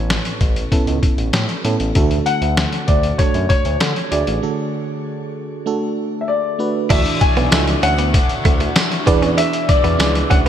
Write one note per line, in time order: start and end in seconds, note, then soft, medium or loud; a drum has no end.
0.00 0.18 A1 loud
0.00 0.37 A2 medium
0.00 0.71 B3 medium
0.00 0.72 C#4 medium
0.00 0.72 E4 medium
0.00 0.73 A4 medium
0.00 1.97 B4 medium
0.00 0.98 C#5 medium
0.10 snare medium
0.10 closed hi-hat medium
0.25 closed hi-hat soft
0.41 0.64 A1 medium
0.41 kick medium
0.41 closed hi-hat medium
0.56 closed hi-hat soft
0.71 1.36 B3 medium
0.71 1.36 C#4 medium
0.71 1.36 E4 medium
0.71 1.37 A4 medium
0.71 kick medium
0.71 closed hi-hat medium
0.87 0.99 C#2 medium
0.87 closed hi-hat soft
1.03 kick medium
1.03 closed hi-hat medium
1.18 1.30 A1 medium
1.18 closed hi-hat soft
1.33 1.45 A2 loud
1.33 snare loud
1.33 closed hi-hat medium
1.49 closed hi-hat soft
1.64 1.76 A2 medium
1.64 1.86 B3 medium
1.64 1.86 C#4 medium
1.64 1.86 E4 medium
1.64 1.86 A4 medium
1.64 closed hi-hat medium
1.80 1.92 A1 medium
1.80 closed hi-hat soft
1.95 2.19 D2 medium
1.95 2.84 D3 medium
1.95 2.81 A3 medium
1.95 2.81 D4 medium
1.95 2.82 F#4 medium
1.95 2.82 A4 medium
1.95 kick medium
1.95 closed hi-hat medium
2.11 closed hi-hat soft
2.26 2.90 F#5 loud
2.26 closed hi-hat medium
2.42 2.65 D2 medium
2.42 closed hi-hat soft
2.57 snare medium
2.57 closed hi-hat medium
2.72 closed hi-hat soft
2.87 3.11 D2 medium
2.87 3.20 D5 medium
2.87 kick medium
2.87 closed hi-hat medium
3.03 closed hi-hat soft
3.18 3.83 A3 medium
3.18 3.83 D4 medium
3.18 3.84 F#4 medium
3.18 3.84 A4 medium
3.18 3.48 C#5 medium
3.18 kick medium
3.18 closed hi-hat medium
3.34 3.46 F#2 medium
3.34 closed hi-hat soft
3.49 4.13 C#5 medium
3.49 kick medium
3.49 closed hi-hat medium
3.65 3.77 D2 medium
3.65 closed hi-hat soft
3.80 3.92 D3 medium
3.80 snare loud
3.80 closed hi-hat medium
3.96 closed hi-hat soft
4.11 4.24 D2 medium
4.11 4.33 A3 medium
4.11 4.33 D4 medium
4.11 4.34 F#4 medium
4.11 4.34 G#4 medium
4.11 5.93 D5 medium
4.11 closed hi-hat medium
4.27 4.39 A1 medium
4.27 closed hi-hat soft
4.42 5.32 D3 medium
4.42 5.28 A3 medium
4.42 5.29 D4 medium
4.42 5.29 F#4 medium
4.42 5.29 A4 medium
5.66 6.31 A3 medium
5.66 6.31 D4 medium
5.66 6.31 F#4 medium
5.66 6.31 A4 medium
6.21 6.28 E5 medium
6.28 6.92 D5 medium
6.59 6.81 A3 medium
6.59 6.81 D4 medium
6.59 6.81 F#4 medium
6.59 6.81 B4 medium
6.89 7.02 D2 loud
6.89 7.21 D3 medium
6.89 7.79 E3 medium
6.89 7.21 A3 medium
6.89 7.33 D4 medium
6.89 7.03 D4 loud
6.89 7.19 D4 medium
6.89 7.33 E4 medium
6.89 7.33 F#4 medium
6.89 7.33 A4 medium
6.89 7.33 D5 medium
6.89 7.19 E5 medium
6.89 kick loud
6.89 closed hi-hat loud
6.89 crash loud
7.06 closed hi-hat medium
7.20 8.14 A3 soft
7.20 8.15 D4 soft
7.20 7.85 G#5 loud
7.20 muted clean electric guitar stroke soft
7.20 kick loud
7.20 closed hi-hat medium
7.37 7.48 B1 medium
7.37 7.49 B3 medium
7.37 closed hi-hat soft
7.51 7.75 C#2 medium
7.51 8.37 D4 medium
7.51 8.37 E4 medium
7.51 8.38 F#4 medium
7.51 8.38 A4 medium
7.51 8.38 E5 medium
7.51 muted clean electric guitar stroke soft
7.51 snare loud
7.51 closed hi-hat medium
7.51 tambourine medium
7.67 closed hi-hat medium
7.83 8.18 D2 medium
7.83 7.95 C#4 medium
7.83 9.42 F#5 loud
7.83 closed hi-hat medium
7.98 8.11 B3 medium
7.98 closed hi-hat medium
8.13 8.75 D3 medium
8.13 8.76 A3 medium
8.13 8.77 D4 medium
8.13 muted clean electric guitar stroke soft
8.13 kick loud
8.13 closed hi-hat medium
8.29 closed hi-hat medium
8.45 8.68 D2 loud
8.45 8.57 A3 medium
8.45 kick medium
8.45 closed hi-hat medium
8.60 8.73 A3 medium
8.60 closed hi-hat soft
8.75 9.07 D3 medium
8.75 9.06 A3 medium
8.75 9.08 D4 medium
8.75 muted clean electric guitar stroke soft
8.75 snare loud
8.75 closed hi-hat medium
8.75 tambourine medium
8.92 closed hi-hat soft
9.06 9.42 E2 loud
9.06 9.69 E2 medium
9.06 9.69 B2 medium
9.06 9.67 E3 medium
9.06 9.96 E3 medium
9.06 9.19 B3 medium
9.06 9.81 D4 medium
9.06 9.81 E4 medium
9.06 9.81 G#4 medium
9.06 9.81 B4 medium
9.06 9.81 D5 loud
9.06 kick loud
9.06 closed hi-hat medium
9.22 9.35 C#4 medium
9.22 closed hi-hat medium
9.38 9.50 D4 medium
9.38 9.70 E5 medium
9.38 closed hi-hat loud
9.53 closed hi-hat medium
9.68 10.49 B2 soft
9.68 10.49 E3 medium
9.68 10.32 D5 loud
9.68 muted clean electric guitar stroke soft
9.68 kick loud
9.68 closed hi-hat medium
9.84 9.96 E2 loud
9.84 9.96 B3 medium
9.84 closed hi-hat soft
9.99 10.23 C#2 medium
9.99 10.49 D4 medium
9.99 10.49 E4 medium
9.99 10.49 G#4 medium
9.99 10.49 B4 medium
9.99 10.49 D5 medium
9.99 muted clean electric guitar stroke soft
9.99 snare loud
9.99 closed hi-hat medium
9.99 tambourine medium
10.15 closed hi-hat medium
10.30 10.49 D2 medium
10.30 10.43 C#4 medium
10.30 10.37 F#5 medium
10.30 kick medium
10.30 closed hi-hat medium